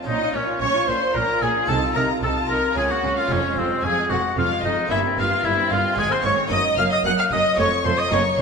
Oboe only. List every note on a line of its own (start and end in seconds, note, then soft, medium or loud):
0.07 0.36 D#4 medium
0.34 0.60 C#4 medium
0.61 0.89 C#5 medium
0.88 1.17 C5 medium
1.16 1.44 A#4 medium
1.42 1.71 G#4 medium
1.69 1.95 A4 medium
1.96 2.08 A#4 medium
2.24 2.35 A4 medium
2.50 2.76 A#4 medium
2.78 2.93 G#4 medium
2.91 3.17 F#4 medium
3.18 3.33 F4 medium
3.32 3.60 C#4 medium
3.58 3.86 C4 medium
3.85 4.12 G#4 medium
4.11 4.37 F#4 medium
4.38 4.50 F4 medium
4.65 4.90 D#4 medium
4.91 5.17 E4 medium
5.19 5.46 F4 medium
5.45 5.71 E4 medium
5.72 6.00 F4 medium
5.99 6.14 G#4 medium
6.12 6.25 C5 medium
6.25 6.37 C#5 loud
6.53 6.64 D#5 medium
6.79 6.85 F5 loud
6.93 6.98 D#5 medium
7.07 7.18 F#5 loud
7.19 7.32 F5 medium
7.32 7.58 D#5 loud
7.59 7.71 C#5 medium
7.85 8.00 C5 medium
7.99 8.12 D#5 medium
8.13 8.25 C#5 medium